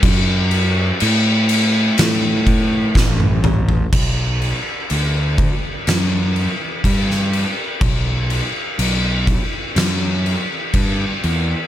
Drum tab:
CC |x-x-x-x-x-x-----|x-x-x-x-x-x-x-x-|x-x-x-x-x-x-x-x-|
SD |--------o---o---|--------o----o--|--------o-------|
T1 |-------------o--|----------------|----------------|
T2 |--------------o-|----------------|----------------|
FT |---------------o|----------------|----------------|
BD |o---------o-o---|o-----o-----o---|o-----o-----o---|